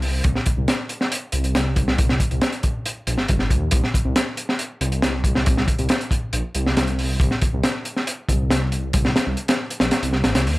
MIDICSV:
0, 0, Header, 1, 3, 480
1, 0, Start_track
1, 0, Key_signature, -3, "minor"
1, 0, Tempo, 434783
1, 269, Time_signature, 4, 2, 24, 8
1, 11688, End_track
2, 0, Start_track
2, 0, Title_t, "Detuned saw bass"
2, 0, Program_c, 0, 39
2, 0, Note_on_c, 0, 36, 78
2, 238, Note_off_c, 0, 36, 0
2, 275, Note_on_c, 0, 36, 100
2, 372, Note_off_c, 0, 36, 0
2, 631, Note_on_c, 0, 36, 106
2, 729, Note_off_c, 0, 36, 0
2, 1469, Note_on_c, 0, 36, 83
2, 2396, Note_off_c, 0, 36, 0
2, 2554, Note_on_c, 0, 36, 103
2, 2650, Note_off_c, 0, 36, 0
2, 3390, Note_on_c, 0, 34, 82
2, 3490, Note_off_c, 0, 34, 0
2, 3513, Note_on_c, 0, 31, 46
2, 3607, Note_off_c, 0, 31, 0
2, 3638, Note_on_c, 0, 31, 96
2, 3871, Note_on_c, 0, 39, 103
2, 3887, Note_off_c, 0, 31, 0
2, 4068, Note_off_c, 0, 39, 0
2, 4111, Note_on_c, 0, 36, 99
2, 4210, Note_off_c, 0, 36, 0
2, 4470, Note_on_c, 0, 36, 101
2, 4568, Note_off_c, 0, 36, 0
2, 5309, Note_on_c, 0, 36, 83
2, 6236, Note_off_c, 0, 36, 0
2, 6390, Note_on_c, 0, 36, 108
2, 6488, Note_off_c, 0, 36, 0
2, 6989, Note_on_c, 0, 34, 83
2, 7089, Note_off_c, 0, 34, 0
2, 7232, Note_on_c, 0, 36, 78
2, 7917, Note_off_c, 0, 36, 0
2, 7947, Note_on_c, 0, 36, 101
2, 8048, Note_off_c, 0, 36, 0
2, 8315, Note_on_c, 0, 36, 106
2, 8411, Note_off_c, 0, 36, 0
2, 9149, Note_on_c, 0, 36, 80
2, 10076, Note_off_c, 0, 36, 0
2, 10231, Note_on_c, 0, 36, 110
2, 10329, Note_off_c, 0, 36, 0
2, 10830, Note_on_c, 0, 34, 85
2, 10930, Note_off_c, 0, 34, 0
2, 11070, Note_on_c, 0, 36, 80
2, 11312, Note_on_c, 0, 31, 88
2, 11328, Note_off_c, 0, 36, 0
2, 11410, Note_off_c, 0, 31, 0
2, 11433, Note_on_c, 0, 36, 77
2, 11554, Note_on_c, 0, 39, 99
2, 11571, Note_off_c, 0, 36, 0
2, 11688, Note_off_c, 0, 39, 0
2, 11688, End_track
3, 0, Start_track
3, 0, Title_t, "Drums"
3, 25, Note_on_c, 9, 46, 90
3, 135, Note_off_c, 9, 46, 0
3, 265, Note_on_c, 9, 42, 100
3, 272, Note_on_c, 9, 36, 124
3, 376, Note_off_c, 9, 42, 0
3, 383, Note_off_c, 9, 36, 0
3, 391, Note_on_c, 9, 38, 44
3, 502, Note_off_c, 9, 38, 0
3, 504, Note_on_c, 9, 42, 62
3, 514, Note_on_c, 9, 36, 104
3, 615, Note_off_c, 9, 42, 0
3, 624, Note_off_c, 9, 36, 0
3, 750, Note_on_c, 9, 42, 84
3, 751, Note_on_c, 9, 38, 107
3, 860, Note_off_c, 9, 42, 0
3, 862, Note_off_c, 9, 38, 0
3, 986, Note_on_c, 9, 42, 64
3, 1096, Note_off_c, 9, 42, 0
3, 1113, Note_on_c, 9, 38, 48
3, 1223, Note_off_c, 9, 38, 0
3, 1233, Note_on_c, 9, 42, 99
3, 1344, Note_off_c, 9, 42, 0
3, 1459, Note_on_c, 9, 42, 63
3, 1570, Note_off_c, 9, 42, 0
3, 1589, Note_on_c, 9, 42, 44
3, 1699, Note_off_c, 9, 42, 0
3, 1711, Note_on_c, 9, 38, 113
3, 1711, Note_on_c, 9, 42, 84
3, 1821, Note_off_c, 9, 38, 0
3, 1821, Note_off_c, 9, 42, 0
3, 1945, Note_on_c, 9, 42, 72
3, 1948, Note_on_c, 9, 36, 96
3, 2055, Note_off_c, 9, 42, 0
3, 2059, Note_off_c, 9, 36, 0
3, 2074, Note_on_c, 9, 38, 60
3, 2185, Note_off_c, 9, 38, 0
3, 2190, Note_on_c, 9, 42, 95
3, 2195, Note_on_c, 9, 36, 127
3, 2301, Note_off_c, 9, 42, 0
3, 2305, Note_off_c, 9, 36, 0
3, 2311, Note_on_c, 9, 38, 52
3, 2422, Note_off_c, 9, 38, 0
3, 2427, Note_on_c, 9, 36, 87
3, 2429, Note_on_c, 9, 42, 68
3, 2537, Note_off_c, 9, 36, 0
3, 2539, Note_off_c, 9, 42, 0
3, 2551, Note_on_c, 9, 42, 42
3, 2661, Note_off_c, 9, 42, 0
3, 2666, Note_on_c, 9, 42, 83
3, 2668, Note_on_c, 9, 38, 127
3, 2776, Note_off_c, 9, 42, 0
3, 2779, Note_off_c, 9, 38, 0
3, 2787, Note_on_c, 9, 42, 44
3, 2897, Note_off_c, 9, 42, 0
3, 2904, Note_on_c, 9, 42, 60
3, 2911, Note_on_c, 9, 36, 102
3, 3014, Note_off_c, 9, 42, 0
3, 3022, Note_off_c, 9, 36, 0
3, 3152, Note_on_c, 9, 42, 93
3, 3263, Note_off_c, 9, 42, 0
3, 3389, Note_on_c, 9, 42, 72
3, 3499, Note_off_c, 9, 42, 0
3, 3507, Note_on_c, 9, 38, 45
3, 3617, Note_off_c, 9, 38, 0
3, 3626, Note_on_c, 9, 42, 75
3, 3637, Note_on_c, 9, 36, 92
3, 3736, Note_off_c, 9, 42, 0
3, 3745, Note_on_c, 9, 38, 40
3, 3747, Note_off_c, 9, 36, 0
3, 3855, Note_off_c, 9, 38, 0
3, 3869, Note_on_c, 9, 36, 84
3, 3870, Note_on_c, 9, 42, 61
3, 3979, Note_off_c, 9, 36, 0
3, 3980, Note_off_c, 9, 42, 0
3, 4097, Note_on_c, 9, 42, 100
3, 4110, Note_on_c, 9, 36, 127
3, 4207, Note_off_c, 9, 42, 0
3, 4220, Note_off_c, 9, 36, 0
3, 4235, Note_on_c, 9, 38, 45
3, 4346, Note_off_c, 9, 38, 0
3, 4353, Note_on_c, 9, 36, 89
3, 4358, Note_on_c, 9, 42, 68
3, 4463, Note_off_c, 9, 36, 0
3, 4468, Note_off_c, 9, 42, 0
3, 4590, Note_on_c, 9, 42, 97
3, 4591, Note_on_c, 9, 38, 119
3, 4700, Note_off_c, 9, 42, 0
3, 4702, Note_off_c, 9, 38, 0
3, 4827, Note_on_c, 9, 42, 70
3, 4938, Note_off_c, 9, 42, 0
3, 4956, Note_on_c, 9, 38, 49
3, 5066, Note_off_c, 9, 38, 0
3, 5067, Note_on_c, 9, 42, 86
3, 5178, Note_off_c, 9, 42, 0
3, 5310, Note_on_c, 9, 42, 76
3, 5420, Note_off_c, 9, 42, 0
3, 5432, Note_on_c, 9, 42, 43
3, 5542, Note_off_c, 9, 42, 0
3, 5547, Note_on_c, 9, 38, 113
3, 5554, Note_on_c, 9, 42, 90
3, 5657, Note_off_c, 9, 38, 0
3, 5664, Note_off_c, 9, 42, 0
3, 5784, Note_on_c, 9, 36, 105
3, 5789, Note_on_c, 9, 42, 70
3, 5894, Note_off_c, 9, 36, 0
3, 5899, Note_off_c, 9, 42, 0
3, 5911, Note_on_c, 9, 38, 59
3, 6021, Note_off_c, 9, 38, 0
3, 6029, Note_on_c, 9, 42, 102
3, 6038, Note_on_c, 9, 36, 126
3, 6140, Note_off_c, 9, 42, 0
3, 6149, Note_off_c, 9, 36, 0
3, 6154, Note_on_c, 9, 38, 53
3, 6265, Note_off_c, 9, 38, 0
3, 6267, Note_on_c, 9, 36, 101
3, 6268, Note_on_c, 9, 42, 64
3, 6377, Note_off_c, 9, 36, 0
3, 6379, Note_off_c, 9, 42, 0
3, 6387, Note_on_c, 9, 42, 47
3, 6497, Note_off_c, 9, 42, 0
3, 6500, Note_on_c, 9, 42, 80
3, 6513, Note_on_c, 9, 38, 118
3, 6610, Note_off_c, 9, 42, 0
3, 6623, Note_off_c, 9, 38, 0
3, 6632, Note_on_c, 9, 42, 48
3, 6743, Note_off_c, 9, 42, 0
3, 6743, Note_on_c, 9, 36, 94
3, 6752, Note_on_c, 9, 42, 71
3, 6854, Note_off_c, 9, 36, 0
3, 6862, Note_off_c, 9, 42, 0
3, 6986, Note_on_c, 9, 42, 92
3, 7097, Note_off_c, 9, 42, 0
3, 7226, Note_on_c, 9, 42, 64
3, 7337, Note_off_c, 9, 42, 0
3, 7357, Note_on_c, 9, 38, 45
3, 7468, Note_off_c, 9, 38, 0
3, 7471, Note_on_c, 9, 42, 87
3, 7476, Note_on_c, 9, 38, 121
3, 7581, Note_off_c, 9, 42, 0
3, 7587, Note_off_c, 9, 38, 0
3, 7589, Note_on_c, 9, 42, 45
3, 7699, Note_off_c, 9, 42, 0
3, 7714, Note_on_c, 9, 46, 76
3, 7824, Note_off_c, 9, 46, 0
3, 7947, Note_on_c, 9, 36, 118
3, 7958, Note_on_c, 9, 42, 89
3, 8057, Note_off_c, 9, 36, 0
3, 8068, Note_on_c, 9, 38, 44
3, 8069, Note_off_c, 9, 42, 0
3, 8179, Note_off_c, 9, 38, 0
3, 8187, Note_on_c, 9, 42, 73
3, 8192, Note_on_c, 9, 36, 101
3, 8297, Note_off_c, 9, 42, 0
3, 8303, Note_off_c, 9, 36, 0
3, 8429, Note_on_c, 9, 42, 87
3, 8430, Note_on_c, 9, 38, 113
3, 8539, Note_off_c, 9, 42, 0
3, 8540, Note_off_c, 9, 38, 0
3, 8668, Note_on_c, 9, 42, 64
3, 8779, Note_off_c, 9, 42, 0
3, 8793, Note_on_c, 9, 38, 42
3, 8904, Note_off_c, 9, 38, 0
3, 8911, Note_on_c, 9, 42, 95
3, 9021, Note_off_c, 9, 42, 0
3, 9148, Note_on_c, 9, 36, 92
3, 9152, Note_on_c, 9, 42, 67
3, 9258, Note_off_c, 9, 36, 0
3, 9263, Note_off_c, 9, 42, 0
3, 9389, Note_on_c, 9, 38, 105
3, 9397, Note_on_c, 9, 42, 87
3, 9500, Note_off_c, 9, 38, 0
3, 9507, Note_off_c, 9, 42, 0
3, 9627, Note_on_c, 9, 42, 65
3, 9737, Note_off_c, 9, 42, 0
3, 9863, Note_on_c, 9, 42, 98
3, 9870, Note_on_c, 9, 36, 127
3, 9973, Note_off_c, 9, 42, 0
3, 9980, Note_off_c, 9, 36, 0
3, 9989, Note_on_c, 9, 38, 58
3, 10099, Note_off_c, 9, 38, 0
3, 10110, Note_on_c, 9, 38, 116
3, 10116, Note_on_c, 9, 42, 75
3, 10220, Note_off_c, 9, 38, 0
3, 10226, Note_off_c, 9, 42, 0
3, 10344, Note_on_c, 9, 42, 56
3, 10455, Note_off_c, 9, 42, 0
3, 10469, Note_on_c, 9, 42, 87
3, 10476, Note_on_c, 9, 38, 97
3, 10580, Note_off_c, 9, 42, 0
3, 10587, Note_off_c, 9, 38, 0
3, 10714, Note_on_c, 9, 42, 64
3, 10819, Note_on_c, 9, 38, 100
3, 10824, Note_off_c, 9, 42, 0
3, 10825, Note_on_c, 9, 42, 71
3, 10929, Note_off_c, 9, 38, 0
3, 10935, Note_off_c, 9, 42, 0
3, 10944, Note_on_c, 9, 42, 83
3, 10948, Note_on_c, 9, 38, 103
3, 11054, Note_off_c, 9, 42, 0
3, 11058, Note_off_c, 9, 38, 0
3, 11071, Note_on_c, 9, 42, 81
3, 11179, Note_on_c, 9, 38, 39
3, 11181, Note_off_c, 9, 42, 0
3, 11290, Note_off_c, 9, 38, 0
3, 11303, Note_on_c, 9, 38, 115
3, 11303, Note_on_c, 9, 42, 73
3, 11414, Note_off_c, 9, 38, 0
3, 11414, Note_off_c, 9, 42, 0
3, 11426, Note_on_c, 9, 42, 87
3, 11427, Note_on_c, 9, 38, 103
3, 11536, Note_off_c, 9, 42, 0
3, 11538, Note_off_c, 9, 38, 0
3, 11556, Note_on_c, 9, 46, 87
3, 11667, Note_off_c, 9, 46, 0
3, 11688, End_track
0, 0, End_of_file